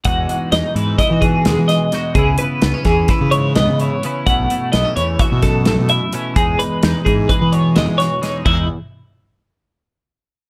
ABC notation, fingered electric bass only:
X:1
M:9/8
L:1/16
Q:3/8=86
K:E
V:1 name="Fingered electric bass" clef=bass
E,,2 z2 E,, z G,,2 z E,3 E,, E,2 z3 | C,,2 z2 C,, z E,,2 z C,3 C,, C,2 z3 | B,,,2 z2 B,,, z E,,2 z B,,3 B,,, B,,2 z3 | E,,2 z2 E,, z G,,2 z E,3 E,, E,2 z3 |
E,,2 z16 |]